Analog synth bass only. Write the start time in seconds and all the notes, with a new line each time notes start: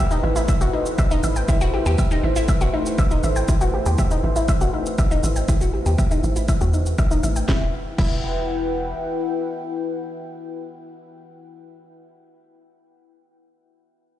0.23 A1
0.61 A1
0.98 A1
1.23 A1
1.48 A1
1.86 E2
2.23 A1
2.61 A1
2.98 A1
3.23 A1
3.48 A1
3.86 E2
4.23 A1
4.61 A1
4.98 A1
5.23 A1
5.48 A1
5.86 E2
6.23 A1
6.61 E2
6.99 A1
7.24 A1
7.48 E1
7.98 E1